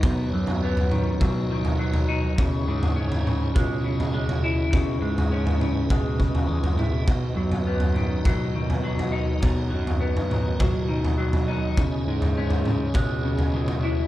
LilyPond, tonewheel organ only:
\new Staff \with { instrumentName = "Tonewheel organ" } { \time 4/4 \key b \major \tempo 4 = 102 << { <b' cis''>1 | dis''1 | b'1 | b'1 |
cis''1~ | cis''1 | } \\ { <dis' fis'>1 | <e' gis'>1~ | <e' gis'>1 | <dis' fis'>1~ |
<dis' fis'>1 | <e' gis'>1 | } >> }